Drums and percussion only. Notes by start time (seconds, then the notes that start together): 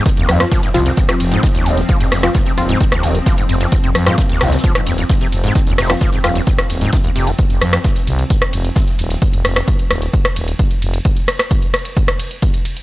0.05 kick, closed hi-hat
0.17 closed hi-hat
0.29 cross-stick, closed hi-hat, open hi-hat, ride
0.40 cross-stick, snare, closed hi-hat
0.51 kick, snare, closed hi-hat
0.63 snare, closed hi-hat
0.74 closed hi-hat, open hi-hat, ride
0.86 closed hi-hat
0.97 kick, closed hi-hat
1.09 cross-stick, closed hi-hat
1.20 closed hi-hat, open hi-hat, ride
1.32 closed hi-hat
1.42 kick, snare, closed hi-hat
1.55 snare, closed hi-hat
1.66 closed hi-hat, open hi-hat, ride
1.77 snare, closed hi-hat
1.89 kick, closed hi-hat
2.00 snare, closed hi-hat
2.11 cross-stick, open hi-hat, ride
2.23 cross-stick, closed hi-hat
2.35 kick, snare, closed hi-hat
2.46 snare, closed hi-hat
2.58 closed hi-hat, open hi-hat, ride
2.69 closed hi-hat
2.80 kick, closed hi-hat
2.92 cross-stick, closed hi-hat
3.03 closed hi-hat, open hi-hat, ride
3.15 closed hi-hat
3.26 kick, snare, closed hi-hat
3.38 closed hi-hat
3.49 closed hi-hat, open hi-hat, ride
3.61 snare, closed hi-hat
3.72 kick, closed hi-hat
3.84 closed hi-hat
3.95 cross-stick, closed hi-hat, open hi-hat, ride
4.06 cross-stick, snare, closed hi-hat
4.18 kick, snare, closed hi-hat
4.29 snare, closed hi-hat
4.40 cross-stick, snare, closed hi-hat, open hi-hat, ride
4.47 snare, closed hi-hat
4.52 snare, closed hi-hat
4.58 snare, closed hi-hat
4.64 kick, closed hi-hat
4.75 cross-stick, closed hi-hat
4.87 closed hi-hat, open hi-hat, ride
4.98 closed hi-hat
5.09 kick, snare, closed hi-hat
5.21 snare, closed hi-hat
5.32 closed hi-hat, open hi-hat, ride
5.44 snare, closed hi-hat
5.55 kick, closed hi-hat
5.67 snare, closed hi-hat
5.78 cross-stick, open hi-hat, ride
5.90 cross-stick, closed hi-hat
6.01 kick, snare, closed hi-hat
6.12 snare, closed hi-hat
6.24 cross-stick, snare, closed hi-hat, open hi-hat, ride
6.35 closed hi-hat
6.47 kick, closed hi-hat
6.58 cross-stick, closed hi-hat
6.70 closed hi-hat, open hi-hat, ride
6.81 closed hi-hat
6.93 kick, snare, closed hi-hat
7.04 closed hi-hat
7.16 closed hi-hat, open hi-hat, ride
7.27 snare, closed hi-hat
7.38 kick, closed hi-hat
7.50 closed hi-hat
7.61 cross-stick, closed hi-hat, open hi-hat, ride
7.72 cross-stick, snare, closed hi-hat
7.84 kick, snare, closed hi-hat
7.95 snare, closed hi-hat
8.07 closed hi-hat, open hi-hat, ride
8.19 closed hi-hat
8.30 kick, closed hi-hat
8.42 cross-stick, closed hi-hat
8.53 closed hi-hat, open hi-hat, ride
8.65 closed hi-hat
8.76 kick, snare, closed hi-hat
8.88 snare, closed hi-hat
8.98 closed hi-hat, open hi-hat, ride
9.10 snare, closed hi-hat
9.22 kick, closed hi-hat
9.33 closed hi-hat
9.45 cross-stick, open hi-hat, ride
9.56 cross-stick, closed hi-hat
9.68 kick, closed hi-hat
9.79 closed hi-hat
9.91 cross-stick, open hi-hat, ride
10.02 closed hi-hat
10.13 kick, closed hi-hat
10.25 cross-stick, closed hi-hat
10.36 open hi-hat, ride
10.48 closed hi-hat
10.59 kick, closed hi-hat
10.71 closed hi-hat
10.82 open hi-hat, ride
10.94 closed hi-hat
11.05 kick, closed hi-hat
11.17 closed hi-hat
11.28 cross-stick, open hi-hat, ride
11.39 cross-stick, closed hi-hat
11.51 kick, closed hi-hat
11.62 closed hi-hat
11.74 cross-stick, open hi-hat, ride
11.85 closed hi-hat
11.97 kick, closed hi-hat
12.08 cross-stick, closed hi-hat
12.20 open hi-hat, ride
12.31 closed hi-hat
12.42 kick, closed hi-hat
12.54 closed hi-hat
12.65 open hi-hat, ride
12.77 closed hi-hat